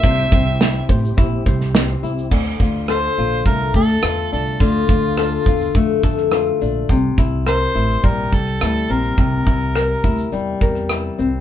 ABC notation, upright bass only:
X:1
M:4/4
L:1/8
Q:1/4=105
K:Dm
V:1 name="Upright bass" clef=bass
C,, C,,2 A,,, B,,, C,,2 C,, | D,, D,,2 B,,, C,, D,, E,, C,, | D,, D,,2 E,, F,, F,,2 B,,, | C,, C,,2 A,,, B,,, C,, D,, B,,, |
C,, C,,2 D,, E,, E,,2 C,, |]